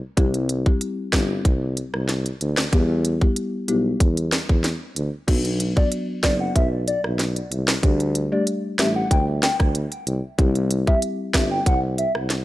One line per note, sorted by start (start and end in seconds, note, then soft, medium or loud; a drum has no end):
0.17 0.67 C2 loud
0.17 0.33 G3 medium
0.17 0.33 C4 medium
0.17 0.33 E4 medium
0.17 0.33 G4 loud
0.17 kick loud
0.17 closed hi-hat medium
0.34 closed hi-hat medium
0.49 closed hi-hat medium
0.66 0.80 G3 medium
0.66 0.80 C4 medium
0.66 0.80 E4 medium
0.66 0.80 G4 medium
0.66 kick loud
0.81 closed hi-hat medium
1.13 1.38 G1 loud
1.13 1.28 G3 medium
1.13 1.28 C4 medium
1.13 1.29 E4 medium
1.13 1.29 G4 medium
1.13 kick loud
1.13 cross-stick medium
1.13 snare loud
1.13 closed hi-hat medium
1.45 1.83 C2 loud
1.45 kick loud
1.45 closed hi-hat medium
1.77 closed hi-hat medium
1.94 2.30 C2 medium
1.94 cross-stick medium
2.09 snare medium
2.09 closed hi-hat medium
2.26 closed hi-hat medium
2.41 2.66 D2 loud
2.41 closed hi-hat medium
2.57 cross-stick medium
2.57 snare loud
2.72 3.23 E2 loud
2.72 2.88 G3 medium
2.72 2.88 B3 medium
2.72 2.88 E4 medium
2.72 2.88 G4 loud
2.72 kick loud
2.72 closed hi-hat medium
3.05 closed hi-hat medium
3.21 3.35 G3 medium
3.21 3.35 B3 medium
3.21 3.35 E4 medium
3.21 3.35 G4 medium
3.21 kick medium
3.36 closed hi-hat medium
3.68 3.93 B1 medium
3.68 3.84 G3 medium
3.68 3.84 B3 medium
3.68 3.84 E4 medium
3.68 3.84 G4 medium
3.68 closed hi-hat medium
4.00 4.38 E2 loud
4.00 kick loud
4.00 closed hi-hat medium
4.17 closed hi-hat medium
4.32 cross-stick medium
4.32 snare loud
4.32 closed hi-hat medium
4.49 4.74 E2 medium
4.49 kick medium
4.64 snare medium
4.64 closed hi-hat medium
4.96 5.09 D2 medium
4.96 closed hi-hat medium
5.28 5.78 B1 loud
5.28 5.43 F#3 medium
5.28 5.43 B3 medium
5.28 5.43 D4 medium
5.28 5.43 F#4 loud
5.28 kick loud
5.28 closed hi-hat medium
5.28 crash medium
5.45 closed hi-hat medium
5.60 closed hi-hat medium
5.76 5.90 F#3 medium
5.76 5.90 B3 medium
5.76 5.90 D4 medium
5.76 5.91 F#4 medium
5.76 5.89 D5 medium
5.76 kick loud
5.92 closed hi-hat medium
6.23 6.48 F#1 loud
6.23 6.39 F#3 medium
6.23 6.39 B3 medium
6.23 6.39 D4 medium
6.23 6.39 F#4 medium
6.23 6.37 D5 medium
6.23 kick loud
6.23 cross-stick loud
6.23 snare loud
6.23 closed hi-hat medium
6.40 6.53 F#5 medium
6.55 6.94 B1 loud
6.55 6.69 E5 medium
6.55 kick loud
6.55 closed hi-hat medium
6.87 7.01 D5 medium
6.87 closed hi-hat medium
7.04 7.41 B1 medium
7.04 cross-stick medium
7.19 snare medium
7.19 closed hi-hat medium
7.36 closed hi-hat medium
7.51 7.76 C2 medium
7.51 closed hi-hat medium
7.68 cross-stick medium
7.68 snare loud
7.83 8.33 D2 loud
7.83 7.98 G3 medium
7.83 7.99 A3 medium
7.83 7.99 D4 medium
7.83 7.99 G4 loud
7.83 kick loud
7.83 closed hi-hat medium
8.00 closed hi-hat medium
8.15 closed hi-hat medium
8.32 8.46 G3 medium
8.32 8.46 A3 medium
8.32 8.46 D4 medium
8.32 8.46 G4 medium
8.32 8.44 D5 medium
8.47 closed hi-hat medium
8.79 9.04 A1 loud
8.79 8.94 G3 medium
8.79 8.94 A3 medium
8.79 8.94 D4 medium
8.79 8.95 G4 medium
8.79 8.93 E5 medium
8.79 cross-stick loud
8.79 snare loud
8.79 closed hi-hat medium
8.96 9.08 F#5 medium
9.11 9.49 D2 loud
9.11 9.25 G5 medium
9.11 kick loud
9.11 closed hi-hat medium
9.43 9.57 G5 medium
9.43 cross-stick medium
9.43 snare loud
9.43 closed hi-hat medium
9.60 9.85 D2 medium
9.60 kick medium
9.60 cross-stick medium
9.75 closed hi-hat medium
9.92 closed hi-hat medium
10.07 10.20 C2 loud
10.07 closed hi-hat medium
10.38 10.88 C2 loud
10.38 10.54 G3 medium
10.38 10.54 C4 medium
10.38 10.54 E4 medium
10.38 10.54 G4 loud
10.38 kick loud
10.38 closed hi-hat medium
10.55 closed hi-hat medium
10.71 closed hi-hat medium
10.87 11.01 G3 medium
10.87 11.01 C4 medium
10.87 11.01 E4 medium
10.87 11.01 G4 medium
10.87 11.00 E5 medium
10.87 kick loud
11.02 closed hi-hat medium
11.34 11.59 G1 loud
11.34 11.50 G3 medium
11.34 11.50 C4 medium
11.34 11.50 E4 medium
11.34 11.50 G4 medium
11.34 11.48 E5 medium
11.34 kick loud
11.34 cross-stick loud
11.34 snare loud
11.34 closed hi-hat medium
11.51 11.63 G5 medium
11.66 12.04 C2 loud
11.66 11.80 F#5 medium
11.66 kick loud
11.66 closed hi-hat medium
11.98 12.12 E5 medium
11.98 closed hi-hat medium
12.15 12.45 C2 medium
12.15 cross-stick medium
12.30 snare medium
12.30 closed hi-hat medium